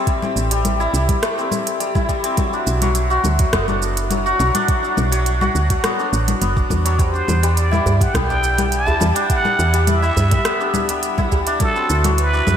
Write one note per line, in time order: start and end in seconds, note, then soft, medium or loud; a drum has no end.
0.00 1.22 A3 medium
0.00 0.22 C4 loud
0.00 1.20 D4 medium
0.00 0.80 E4 medium
0.07 0.50 G3 medium
0.07 kick loud
0.07 closed hi-hat soft
0.07 shaker soft
0.22 1.37 C4 medium
0.22 low conga medium
0.22 shaker soft
0.36 0.88 A1 loud
0.36 shaker medium
0.51 1.08 G3 loud
0.51 closed hi-hat medium
0.51 shaker soft
0.65 closed hi-hat soft
0.65 low conga medium
0.65 shaker soft
0.80 1.95 E4 loud
0.80 shaker soft
0.94 1.15 C2 medium
0.94 shaker medium
1.09 1.79 G3 medium
1.09 kick loud
1.09 closed hi-hat medium
1.09 low conga medium
1.09 shaker soft
1.22 5.66 A3 medium
1.22 cross-stick medium
1.22 closed hi-hat soft
1.22 shaker soft
1.38 2.24 C4 medium
1.38 shaker soft
1.51 low conga medium
1.51 shaker medium
1.67 closed hi-hat medium
1.67 shaker soft
1.80 2.07 G3 medium
1.80 closed hi-hat soft
1.80 shaker soft
1.95 5.43 E4 loud
1.95 kick loud
1.95 low conga medium
1.95 shaker soft
2.09 2.43 G3 loud
2.09 kick medium
2.09 shaker medium
2.24 3.59 C4 loud
2.24 closed hi-hat medium
2.24 shaker soft
2.37 2.81 F#3 medium
2.37 kick loud
2.37 closed hi-hat soft
2.37 low conga medium
2.37 shaker soft
2.53 3.68 D4 medium
2.53 shaker soft
2.67 3.19 B1 loud
2.67 shaker medium
2.82 3.38 F#3 loud
2.82 closed hi-hat medium
2.82 low conga medium
2.82 shaker soft
2.95 closed hi-hat soft
2.95 shaker soft
3.10 4.25 F#4 loud
3.10 shaker soft
3.24 3.46 D2 medium
3.24 low conga medium
3.24 shaker medium
3.39 4.10 F#3 medium
3.39 kick loud
3.39 closed hi-hat medium
3.39 shaker soft
3.53 4.34 F#1 loud
3.53 5.84 B3 medium
3.53 kick medium
3.53 cross-stick medium
3.53 closed hi-hat soft
3.53 shaker soft
3.68 4.54 D4 medium
3.68 low conga medium
3.68 shaker soft
3.82 shaker medium
3.97 closed hi-hat medium
3.97 shaker soft
4.11 4.38 F#3 medium
4.11 closed hi-hat soft
4.11 low conga medium
4.11 shaker soft
4.26 5.41 F#4 loud
4.26 shaker soft
4.39 4.51 B1 loud
4.39 4.67 F#3 loud
4.39 shaker medium
4.55 4.82 D4 loud
4.55 closed hi-hat medium
4.55 low conga medium
4.55 shaker soft
4.68 5.10 F#3 medium
4.68 kick loud
4.68 closed hi-hat soft
4.68 shaker soft
4.83 5.99 D4 medium
4.83 shaker soft
4.97 5.49 B1 loud
4.97 low conga medium
4.97 shaker medium
5.12 5.69 F#3 loud
5.12 closed hi-hat medium
5.12 shaker soft
5.26 closed hi-hat soft
5.26 shaker soft
5.41 7.05 F#4 loud
5.41 low conga medium
5.41 shaker soft
5.55 5.77 D2 medium
5.55 shaker medium
5.70 6.84 F#3 medium
5.70 kick loud
5.70 closed hi-hat medium
5.70 shaker soft
5.84 6.41 B3 medium
5.84 cross-stick medium
5.84 closed hi-hat soft
5.84 low conga medium
5.84 shaker soft
5.99 6.56 D4 medium
5.99 shaker soft
6.13 6.34 A1 medium
6.13 shaker medium
6.28 closed hi-hat medium
6.28 low conga medium
6.28 shaker soft
6.41 6.63 F#1 medium
6.41 8.14 B3 medium
6.41 closed hi-hat soft
6.41 shaker soft
6.56 6.70 D4 medium
6.56 kick loud
6.56 shaker soft
6.70 7.22 E2 medium
6.70 7.13 D4 medium
6.70 kick medium
6.70 low conga medium
6.70 shaker medium
6.85 7.04 F#3 loud
6.85 closed hi-hat medium
6.85 shaker soft
6.93 7.01 D5 medium
6.99 7.42 G3 medium
6.99 7.56 C5 loud
6.99 kick loud
6.99 closed hi-hat soft
6.99 shaker soft
7.14 8.29 D4 medium
7.14 shaker soft
7.28 7.80 E2 loud
7.28 low conga medium
7.28 shaker medium
7.43 7.99 G3 loud
7.43 closed hi-hat medium
7.43 shaker soft
7.57 8.02 D5 medium
7.57 closed hi-hat soft
7.57 shaker soft
7.71 8.86 E4 medium
7.71 low conga medium
7.71 shaker soft
7.86 8.08 G2 medium
7.86 djembe bass medium
7.86 shaker medium
8.01 8.56 G3 medium
8.01 8.16 F#5 loud
8.01 kick loud
8.01 closed hi-hat medium
8.01 shaker soft
8.14 8.95 B1 loud
8.14 10.44 B3 medium
8.14 8.73 G5 loud
8.14 kick medium
8.14 cross-stick medium
8.14 closed hi-hat soft
8.14 low conga medium
8.14 djembe bass medium
8.14 shaker soft
8.29 9.15 D4 medium
8.29 djembe slap medium
8.29 djembe tone medium
8.29 shaker soft
8.44 shaker medium
8.58 8.99 G3 medium
8.58 closed hi-hat medium
8.58 low conga medium
8.58 shaker soft
8.72 9.17 A5 loud
8.72 closed hi-hat soft
8.72 shaker soft
8.86 10.02 E4 medium
8.86 djembe tone medium
8.86 djembe bass medium
8.86 shaker soft
9.00 9.13 E2 loud
9.00 9.28 G3 medium
9.00 low conga medium
9.00 shaker medium
9.15 9.44 D4 loud
9.15 9.29 G5 loud
9.15 closed hi-hat medium
9.15 shaker soft
9.29 9.72 G3 medium
9.29 9.89 F#5 loud
9.29 kick loud
9.29 closed hi-hat soft
9.29 shaker soft
9.45 10.60 D4 medium
9.45 low conga medium
9.45 shaker soft
9.59 10.11 E2 loud
9.59 shaker medium
9.74 10.30 G3 loud
9.74 closed hi-hat soft
9.74 djembe slap soft
9.74 shaker soft
9.87 11.03 E5 loud
9.87 closed hi-hat soft
9.87 low conga medium
9.87 shaker soft
10.02 11.18 E4 medium
10.02 shaker soft
10.16 10.39 G2 medium
10.16 djembe bass medium
10.16 shaker medium
10.31 10.88 G3 medium
10.31 kick loud
10.31 closed hi-hat medium
10.31 low conga medium
10.31 shaker soft
10.45 11.82 B3 medium
10.45 cross-stick medium
10.45 closed hi-hat soft
10.45 shaker soft
10.60 11.47 D4 medium
10.60 shaker soft
10.74 djembe tone medium
10.74 low conga medium
10.74 shaker medium
10.89 11.30 G3 medium
10.89 closed hi-hat medium
10.89 djembe tone soft
10.89 shaker soft
11.03 closed hi-hat soft
11.03 shaker soft
11.18 12.57 E4 medium
11.18 kick loud
11.18 djembe tone medium
11.18 low conga medium
11.18 shaker soft
11.31 11.66 G3 loud
11.31 kick medium
11.31 djembe tone medium
11.31 djembe bass medium
11.31 shaker medium
11.47 12.33 D4 loud
11.47 closed hi-hat medium
11.47 djembe slap soft
11.47 shaker soft
11.60 12.03 F#3 medium
11.60 12.15 A4 loud
11.60 kick loud
11.60 closed hi-hat soft
11.60 low conga medium
11.60 shaker soft
11.76 12.57 C4 medium
11.76 shaker soft
11.90 12.42 D2 loud
11.90 shaker medium
12.04 12.57 F#3 loud
12.04 closed hi-hat medium
12.04 low conga medium
12.04 shaker soft
12.18 12.57 B4 loud
12.18 closed hi-hat soft
12.18 shaker soft
12.33 12.57 D4 loud
12.33 shaker soft
12.47 12.57 F#2 medium
12.47 low conga medium
12.47 djembe bass medium
12.47 shaker medium